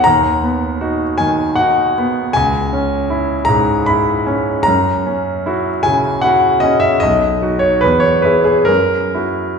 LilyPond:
\new Staff \with { instrumentName = "Grand piano" } { \time 3/4 \key b \major \tempo 4 = 77 << { ais''4. gis''8 fis''4 | gis''4. ais''8 b''4 | ais''4. gis''8 fis''8 dis''16 e''16 | dis''8. cis''16 b'16 cis''16 b'16 gis'16 ais'4 | } \\ { dis,8 b8 <dis' fis'>8 dis8 <dis' fis'>8 b8 | cis,8 cis'8 e'8 gis,8 e'8 cis'8 | fis,8 cis'8 <e' fis'>8 cis8 <e' fis'>8 cis'8 | b,,8 <dis' fis'>8 e,8 <e' gis'>8 fis,8 <e' fis'>8 | } >> }